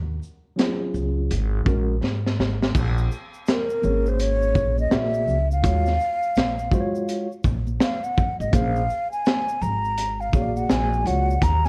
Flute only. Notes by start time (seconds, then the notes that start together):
3.50 A#4
4.09 C5
4.22 C#5
4.80 D#5
4.93 E5
5.52 F5
7.82 F5
8.04 F#5
8.40 D#5
8.53 F5
9.12 G#5
9.62 A#5
10.21 F5
10.57 F#5
10.71 G#5
11.07 F#5
11.43 A#5
11.65 G#5